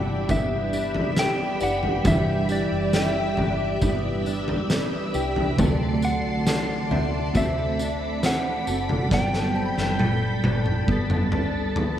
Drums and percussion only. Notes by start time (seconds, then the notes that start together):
0.29 kick, floor tom, tambourine
0.73 tambourine
0.94 floor tom
1.16 snare, tambourine
1.60 tambourine
1.83 floor tom
2.05 kick, floor tom, tambourine
2.49 tambourine
2.93 snare, tambourine
3.37 floor tom
3.81 kick, floor tom, tambourine
4.26 tambourine
4.48 floor tom
4.70 snare, tambourine
5.14 tambourine
5.36 floor tom
5.58 kick, floor tom, tambourine
6.02 tambourine
6.47 snare, tambourine
6.91 floor tom
7.35 kick, floor tom, tambourine
7.79 tambourine
8.23 snare, tambourine
8.67 tambourine
8.89 floor tom
9.11 kick, snare
9.33 snare
9.78 snare
9.99 high tom
10.44 high tom
10.66 mid tom
10.88 kick
11.10 mid tom
11.32 mid tom
11.76 mid tom